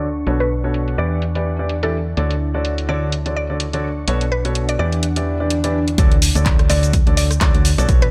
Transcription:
Already playing: D2 D4 D5 C#6
0.27 B1 B2 D4 F#4 A4 B4 C#5, closed hi-hat
0.40 B4, closed hi-hat
0.64 B2 D4 F#4 A4 B4 C#5
0.74 closed hi-hat
0.88 closed hi-hat
0.98 E2 E3 D4 E4 G4 B4 D5
1.22 closed hi-hat
1.35 E3 D4 E4 G4 B4 D5, closed hi-hat
1.59 E3 D4 E4 G4 B4 D5
1.69 closed hi-hat
1.83 E3 D4 E4 G4 A4 B4 D5, closed hi-hat
2.17 D2 D3 D4 F#4 A4 C#5 D5, closed hi-hat
2.31 closed hi-hat
2.54 D3 D4 F#4 A4 C#5 D5
2.65 closed hi-hat
2.73 C#6
2.78 closed hi-hat
2.89 D3 D4 F#4 A4 C#5 D5
3.12 closed hi-hat
3.26 D3 D4 F#4 A4 C#5 D5, closed hi-hat
3.36 D5
3.50 D3 D4 F#4 A4 C#5 D5
3.60 closed hi-hat
3.73 D3 D4 F#4 A4 C#5 D5, closed hi-hat
4.08 B1 B2 D4 F#4 A4 B4 C#5, closed hi-hat
4.21 closed hi-hat
4.32 B4
4.45 B2 D4 F#4 A4 B4 C#5, closed hi-hat
4.55 closed hi-hat
4.69 D5, closed hi-hat
4.79 E2 E3 D4 E4 G4 B4 D5
4.92 closed hi-hat
5.03 closed hi-hat, swell
5.16 E3 D4 E4 G4 B4 D5, closed hi-hat
5.40 E3 D4 E4 G4 B4 D5
5.50 closed hi-hat
5.64 E3 D4 E4 G4 B4 D5, closed hi-hat
5.88 closed hi-hat
5.98 D2 D3 D4 F#4 A4 C#5 D5, kick, closed hi-hat, impact, shaker
6.12 closed hi-hat
6.22 open hi-hat, shaker
6.35 D2 D3 D4 F#4 A4 C#5 D5, closed hi-hat, shaker
6.46 kick, clap, closed hi-hat, shaker
6.59 cross-stick, closed hi-hat
6.70 D2 D3 D4 F#4 A4 C#5 D5, clap, open hi-hat, shaker
6.83 closed hi-hat, shaker
6.93 kick, closed hi-hat, shaker
7.07 D2 D3 D4 F#4 A4 C#5 D5, closed hi-hat
7.17 D5, open hi-hat, shaker
7.31 cross-stick, closed hi-hat, shaker
7.41 D2 D3 D4 F#4 A4 C#5 D5, kick, clap, closed hi-hat, shaker
7.55 D2 D3 D4 F#4 A4 C#5 D5, closed hi-hat
7.65 open hi-hat, shaker
7.78 B1 B2 D4 F#4 A4 C#5 D5, closed hi-hat, shaker
7.89 B1 B2 D4 F#4 A4 B4 C#5, kick, closed hi-hat, shaker
8.02 B4, closed hi-hat

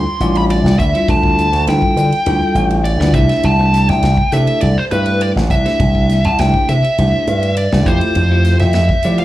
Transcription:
Already playing: C6
0.20 A1 G3 D4 E4 F4 D5, hi-hat pedal, ride
0.35 B5, ride
0.50 D5, ride
0.64 C2, snare
0.79 D2 E5, kick, hi-hat pedal, ride
0.95 G3 D4 E4 F4 C5, ride
1.08 D2 A5, kick, ride
1.23 kick
1.39 hi-hat pedal, ride
1.52 D2, snare, ride
1.67 D2 G3 D4 E4 F4 A4 G5, snare, ride
1.82 kick
1.96 D3, hi-hat pedal, ride
2.12 ride
2.26 D2 G3 D4 E4 F4 A4, ride
2.55 A1, hi-hat pedal, ride
2.71 ride
2.84 D5, ride
3.00 D2 G3 D4 E4 F4 B4, snare
3.14 C2 A3 D4 E4 G4 C5 E5, kick, hi-hat pedal, ride
3.29 snare, ride
3.43 C2 A5, ride
3.59 A3 D4 E4 G4 C5
3.74 snare, hi-hat pedal, ride
3.89 C2 G5, snare, ride
4.03 C2, snare, ride
4.17 kick
4.32 C3 A3 D4 E4 G4 A4 E5, hi-hat pedal, ride
4.47 ride
4.61 C2 D5, ride
4.78 C5
4.91 G2 A3 D4 E4 G4 B4 C5, hi-hat pedal, ride
5.06 ride
5.21 D5, ride
5.36 A1, snare
5.50 C2 E5, kick, hi-hat pedal, ride
5.65 A3 D4 E4 G4 C5, snare, ride
5.80 C2, kick, ride
5.95 kick
6.09 snare, hi-hat pedal, ride
6.25 C2 A5, ride
6.39 C2 A3 D4 E4 G4 C5 G5, snare, ride
6.54 kick
6.69 C3 E5, hi-hat pedal, ride
6.84 ride
6.98 C2 A3 D4 E4 G4 C5, ride
7.27 G2, hi-hat pedal, ride
7.43 ride
7.57 D5, ride
7.72 C2 A3 D4 E4 G4 C5, snare
7.86 F2 A3 E4 F4 G4 C5, kick, hi-hat pedal, ride
8.01 ride
8.15 F2, ride
8.31 A3 E4 F4 G4 C5
8.45 snare, hi-hat pedal, ride
8.59 F2 E5, snare, ride
8.73 F2, snare, ride
8.89 kick
9.03 F3 A3 E4 F4 G4 D5, hi-hat pedal, ride
9.18 F5, ride

